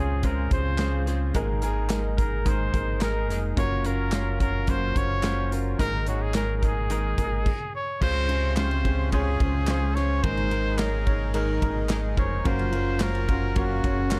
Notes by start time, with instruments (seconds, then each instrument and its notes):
Already playing: fingered electric bass C#2, grand piano C#3 C#4 F4 G#4 C5 C#5, clean electric guitar F4 G#4, trumpet G#4
0.00 clean electric guitar C4
0.23 clean electric guitar C#3 G#3 C4 F4 G#4, grand piano C#4 F4 G#4 C5, trumpet A#4, kick, closed hi-hat
0.51 fingered electric bass C#2, clean electric guitar C4 F4 G#4, grand piano C#4 F4 G#4 C5, trumpet C5, kick, closed hi-hat
0.78 clean electric guitar G#3 C4 F4 G#4, grand piano C#4 F4 G#4 C5, snare, clap, closed hi-hat
1.06 clean electric guitar C4 F4 G#4, grand piano C#4 F4 G#4 C5, snare, closed hi-hat
1.34 fingered electric bass G#1, clean electric guitar G#2 D#3 G#3 D#4 G#4 A#4, grand piano G#2 A#3 D#4 G#4 A#4, kick, closed hi-hat
1.61 clean electric guitar G#3 D#4 G#4 A#4, grand piano A#3 D#4 G#4 A#4, closed hi-hat
1.89 clean electric guitar G#3 D#4 G#4 A#4, grand piano A#3 D#4 G#4 A#4, snare, clap, closed hi-hat
2.17 clean electric guitar G#3 D#4 G#4 A#4, grand piano A#3 D#4 G#4 A#4, trumpet A#4, kick, closed hi-hat
2.45 clean electric guitar G#2 D#3 G#3 D#4 G#4 A#4, grand piano A#3 D#4 G#4 A#4, trumpet C5, kick, closed hi-hat
2.73 fingered electric bass G#1, clean electric guitar G#3 D#4 G#4 A#4, grand piano A#3 D#4 G#4 A#4, kick, closed hi-hat
3.01 clean electric guitar G#3 D#4 G#4 A#4, grand piano A#3 D#4 G#4 A#4, trumpet A#4, snare, clap, closed hi-hat
3.29 fingered electric bass F1, clean electric guitar G#3 D#4 G#4 A#4, grand piano A#3 D#4 G#4, snare, closed hi-hat
3.56 fingered electric bass F#1, clean electric guitar F#3 A#3 C#4 F4 A#4, grand piano C#4 F4 F#4 A#4, trumpet C#5, kick, closed hi-hat
3.84 grand piano C#4 F4 F#4 A#4, clean electric guitar C#4 F4 A#4, trumpet A#4, closed hi-hat
4.12 clean electric guitar A#3 C#4 F4 A#4, grand piano C#4 F4 F#4 C#5, snare, clap, closed hi-hat
4.40 grand piano C#4 F4 F#4 C#5, clean electric guitar C#4 F4 A#4, trumpet A#4, kick, closed hi-hat
4.67 clean electric guitar F#3 A#3 C#4 F4 A#4, grand piano C#4 F4 F#4 A#4, trumpet C5, kick, closed hi-hat
4.95 fingered electric bass F#1, grand piano C#4 F4 F#4 C5, clean electric guitar C#4 F4 A#4, trumpet C#5, kick, closed hi-hat
5.23 clean electric guitar A#3 C#4 F4 A#4, grand piano C#4 F4 F#4 C5, snare, clap, closed hi-hat
5.51 grand piano C#4 F4 F#4 A#4, clean electric guitar C#4 F4 A#4, closed hi-hat
5.79 fingered electric bass G#1, clean electric guitar G#2 D#3 G#3 D#4 G#4 A#4, grand piano G#2 A#3 D#4 G#4 A#4, trumpet A#4, kick, closed hi-hat
6.06 clean electric guitar G#3 D#4 G#4 A#4, grand piano A#3 D#4 G#4 C#5, trumpet F#4, closed hi-hat
6.22 trumpet G#4
6.34 clean electric guitar G#3 D#4 G#4 A#4, grand piano A#3 D#4 G#4 A#4, trumpet A#4, snare, clap, closed hi-hat
6.57 trumpet A#4
6.62 clean electric guitar G#3 D#4 G#4 A#4, grand piano A#3 D#4 G#4 A#4, trumpet G#4, kick, closed hi-hat
6.90 clean electric guitar G#2 D#3 G#3 D#4 G#4 A#4, grand piano A#3 D#4 G#4 A#4, closed hi-hat
7.17 fingered electric bass G#1, clean electric guitar G#3 D#4 G#4 A#4, grand piano A#3 D#4 G#4 A#4, kick, closed hi-hat
7.46 kick, crash
7.75 trumpet C#5
8.01 fingered electric bass C#2, french horn section C3 C4, clean electric guitar C#3 G#3 C#4 F4 C5, grand piano C#3 C#4 F4 G#4 C5, trumpet C5, kick, crash
8.29 grand piano C#4 F4 G#4 C5, clean electric guitar C#4 F4 C5, ride
8.56 clean electric guitar G#3 C#4 F4 C5, grand piano C#4 F4 G#4 C5, trumpet C5, snare, clap, ride
8.71 ride
8.84 grand piano C#4 F4 G#4 C5, clean electric guitar C#4 F4 C5, kick, ride
9.12 clean electric guitar C#3 G#3 C#4 F4 C5, grand piano C#4 F4 G#4 C#5, trumpet G#4, kick, ride
9.39 fingered electric bass C#2, grand piano C#4 F4 G#4 C5, clean electric guitar C#4 F4 C5, kick, ride
9.67 clean electric guitar G#3 C#4 F4 C5, grand piano C#4 F4 G#4 C5, snare, clap, ride
9.95 grand piano C#4 F4 G#4 C5, clean electric guitar C#4 F4 C5, trumpet C#5, snare, ride
10.23 fingered electric bass G#1, clean electric guitar G#2 D#3 G#3 D#4 G#4 A#4, grand piano G#2 A#3 D#4 G#4 A#4, french horn section D#3 D#4, trumpet C5, kick, ride
10.37 ride
10.51 clean electric guitar G#3 D#4 G#4 A#4, grand piano A#3 D#4 G#4 A#4, ride
10.78 clean electric guitar G#3 D#4 G#4 A#4, grand piano A#3 D#4 G#4 C#5, trumpet A#4, snare, clap, ride
11.05 grand piano A#3 D#4 G#4 C#5, clean electric guitar D#4 G#4 A#4, kick, ride
11.10 clean electric guitar G#3
11.34 clean electric guitar G#2 D#3 G#3 D#4 G#4 A#4, french horn section D#3 D#4, grand piano A#3 D#4 G#4 A#4, trumpet A#4, ride
11.61 fingered electric bass G#1, clean electric guitar G#3 D#4 G#4 A#4, grand piano A#3 D#4 G#4 A#4, kick, ride
11.89 clean electric guitar G#3 D#4 G#4 A#4, grand piano A#3 D#4 G#4 A#4, snare, clap, ride
12.17 fingered electric bass F1, clean electric guitar G#3 D#4 G#4 A#4, grand piano A#3 D#4 G#4 C5, trumpet C#5, kick, ride
12.45 fingered electric bass F#1, french horn section F3 F4, clean electric guitar F#3 A#3 C#4 F4 A#4, grand piano C#4 F4 F#4 A#4, trumpet C5, kick, ride
12.59 ride
12.72 grand piano C#4 F4 F#4 A#4, clean electric guitar C#4 F4 A#4, ride
13.00 clean electric guitar A#3 C#4 F4 A#4, grand piano C#4 F4 F#4 C5, trumpet A#4, snare, clap, ride
13.15 ride
13.27 grand piano C#4 F4 F#4 A#4, clean electric guitar C#4 F4 A#4, kick, ride
13.56 clean electric guitar F#3 A#3 C#4 F4 A#4, grand piano C#4 F4 F#4 A#4, trumpet F#4, kick, ride
13.83 fingered electric bass F#1, french horn section C#3 C#4, grand piano C#4 F4 F#4 C#5, clean electric guitar C#4 F4 A#4, kick, ride
14.11 clean electric guitar A#3 C#4 F4 A#4, grand piano C#4 F4 F#4 A#4, snare, clap, ride